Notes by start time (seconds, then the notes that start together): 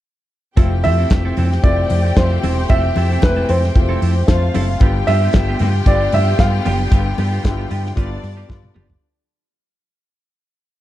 0.56 F1 C3 A3 C4 E4 F4 G4 A4 G5, kick, closed hi-hat, muted conga
0.72 muted clean electric guitar stroke
0.84 F2 C4 E4 A4 E5, open hi-hat, muted conga
0.98 C4 E4 A4
1.09 F1 A3 C4 E4 F4, kick, snare, closed hi-hat, high conga
1.25 C4 E4 A4
1.37 F2 C4 E4 A4, open hi-hat, low conga
1.52 muted clean electric guitar stroke, snare
1.62 F1 A3 C4 E4 F4 D5, muted clean electric guitar stroke, kick, closed hi-hat, muted conga
1.78 muted clean electric guitar stroke
1.90 F2, open hi-hat, low conga
2.05 muted clean electric guitar stroke
2.16 F2 A3 C4 E4 F4 C5, muted clean electric guitar stroke, kick, snare, closed hi-hat, high conga
2.32 muted clean electric guitar stroke
2.43 E1 C4 E4 A4, open hi-hat, high conga
2.58 muted clean electric guitar stroke
2.69 F1 A3 C4 E4 F4 A4 E5, kick, closed hi-hat, muted conga
2.84 muted clean electric guitar stroke
2.96 F2 C4 E4 A4, open hi-hat, muted conga
3.10 C4 E4 A4
3.22 F1 E3 G#3 C4 E4 B4, kick, snare, closed hi-hat, high conga
3.28 A3
3.37 C4 E4 A4
3.49 F2 C4 E4 A4 C5, open hi-hat
3.63 muted clean electric guitar stroke, snare
3.75 F1 A3 C4 E4 F4, muted clean electric guitar stroke, kick, closed hi-hat
3.89 C4 E4 A4
4.02 F2 C4 E4 A4, open hi-hat
4.16 muted clean electric guitar stroke
4.27 F2 F3 A3 C4 F4 F5, kick, snare, closed hi-hat, high conga
4.42 muted clean electric guitar stroke
4.54 F#1 C4 E4 A4, open hi-hat, high conga
4.68 muted clean electric guitar stroke
4.80 G1 D3 G3 B3 F4 G4 G5, kick, closed hi-hat, muted conga
4.96 muted clean electric guitar stroke
5.07 G2 B3 F4 G4 E5, open hi-hat, muted conga
5.22 B3 F4 G4
5.33 G1 D3 G3 B3 F4, muted clean electric guitar stroke, kick, snare, closed hi-hat, high conga
5.48 B3 F4 G4
5.59 G2 B3 F4 G4, open hi-hat, low conga
5.74 muted clean electric guitar stroke
5.86 G1 D3 G3 B3 F4 D5, muted clean electric guitar stroke, kick, closed hi-hat, muted conga
6.01 muted clean electric guitar stroke
6.12 G2 E5, open hi-hat, low conga
6.27 muted clean electric guitar stroke
6.39 G2 D3 G3 B3 F4 F5, muted clean electric guitar stroke, kick, snare, closed hi-hat, high conga
6.53 muted clean electric guitar stroke
6.65 F#1 B3 F4 G4 G5, open hi-hat, high conga
6.80 muted clean electric guitar stroke
6.91 G1 D3 G3 B3 F4 G4, kick, closed hi-hat, muted conga
7.06 muted clean electric guitar stroke
7.18 G2 B3 F4 G4, open hi-hat, muted conga
7.32 B3 F4 G4
7.43 G1 D3 G3 B3 E4, muted clean electric guitar stroke, kick, snare, closed hi-hat, high conga
7.51 F4
7.58 B3 F4 G4
7.70 G2 B3 F4 G4, open hi-hat
7.85 muted clean electric guitar stroke, snare
7.96 G1 D3 G3 B3 D4 F4 G4 D5, kick, closed hi-hat
8.11 muted clean electric guitar stroke
8.23 G2, muted clean electric guitar stroke, open hi-hat
8.37 B3 F4 G4
8.48 G2 D3 G3 B3 F4, kick, snare, high conga
8.63 muted clean electric guitar stroke, high tom
8.75 F#1 B3 F4 G4, mid tom, high conga
8.90 floor tom